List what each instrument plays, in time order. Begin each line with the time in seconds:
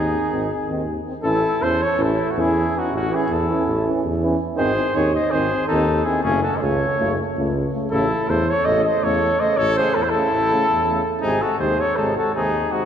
Already playing: tuba D#2, trumpet D#4, flugelhorn G#4
0.31 tuba G#1, euphonium D#3, french horn C4
0.70 tuba D#2, euphonium D#3, french horn C4
1.06 euphonium D#3, french horn C4
1.22 tuba A1, euphonium E3, french horn C#4, trumpet E4, flugelhorn A4
1.61 tuba E2, euphonium E3, french horn C#4, trumpet A4, flugelhorn C5
1.82 trumpet A4, flugelhorn C#5
1.98 tuba A1, euphonium E3, french horn C#4, flugelhorn A4
2.04 trumpet E4
2.31 trumpet F#4, flugelhorn A4
2.37 tuba E2, euphonium E3, french horn C#4, trumpet E4, flugelhorn G#4
2.73 euphonium E3, french horn C#4, trumpet D#4
2.78 flugelhorn F#4
2.91 tuba A1, trumpet C#4
2.96 flugelhorn F#4
3.10 euphonium E3, french horn C#4, trumpet E4
3.15 flugelhorn G#4
3.29 tuba E2, trumpet E4, flugelhorn A4
3.49 euphonium E3, french horn C#4
3.67 tuba A1
3.87 euphonium E3, french horn C#4
4.04 tuba E2
4.23 euphonium E3, french horn C#4
4.57 tuba G#1, euphonium D#3, french horn C4, trumpet G#4, flugelhorn C5
4.94 tuba D#2, euphonium D#3, french horn C4, trumpet G#4, flugelhorn C#5
5.14 trumpet C5, flugelhorn D#5
5.31 tuba G#1, euphonium D#3, french horn C4, trumpet G#4, flugelhorn C5
5.67 tuba D#2, euphonium D#3, french horn C4, trumpet D#4, flugelhorn A4
6.04 euphonium D#3, french horn C4, trumpet E4, flugelhorn G#4
6.22 tuba F#1, euphonium C#3, french horn A3, trumpet C#4, flugelhorn G#4
6.43 trumpet F#4, flugelhorn A4
6.56 trumpet C5, flugelhorn D#5
6.61 tuba C#2, euphonium C#3, french horn A3, trumpet A4, flugelhorn C#5
6.98 tuba F#1, euphonium C#3, french horn A3
7.38 tuba C#2, euphonium C#3, french horn A3
7.73 euphonium C#3, french horn A3
7.91 tuba A1, euphonium C#3, french horn A3, trumpet E4, flugelhorn A4
8.28 tuba E2, euphonium C#3, french horn A3, trumpet A4, flugelhorn C5
8.48 trumpet A4, flugelhorn C#5
8.65 tuba A1, euphonium C#3, french horn A3, trumpet A4, flugelhorn D#5
8.85 trumpet C5, flugelhorn D#5
9.03 tuba E2, euphonium C#3, french horn A3, trumpet A4, flugelhorn C#5
9.39 euphonium C#3, french horn A3, trumpet C5, flugelhorn D#5
9.57 tuba A1, trumpet A4, flugelhorn C#5
9.76 euphonium C#3, french horn A3, trumpet G#4, flugelhorn C5
9.95 tuba E2, trumpet E4, flugelhorn A4
10.03 trumpet G#4, flugelhorn C5
10.09 trumpet E4, flugelhorn A4
10.14 euphonium C#3, french horn A3
10.32 tuba A1
10.51 euphonium C#3, french horn A3
10.70 tuba E2
10.88 euphonium C#3, french horn A3
11.22 tuba G#1, euphonium C3, french horn G#3, trumpet D#4, flugelhorn G#4
11.42 trumpet F#4, flugelhorn A4
11.59 tuba D#2, euphonium C3, french horn G#3, trumpet G#4, flugelhorn C5
11.80 trumpet A4, flugelhorn C#5
11.96 tuba G#1, euphonium C3, french horn G#3, trumpet D#4, flugelhorn A4
12.17 trumpet F#4, flugelhorn A4
12.35 tuba D#2, euphonium C3, french horn G#3, trumpet D#4, flugelhorn G#4
12.72 euphonium C3, french horn G#3, trumpet D#4, flugelhorn F#4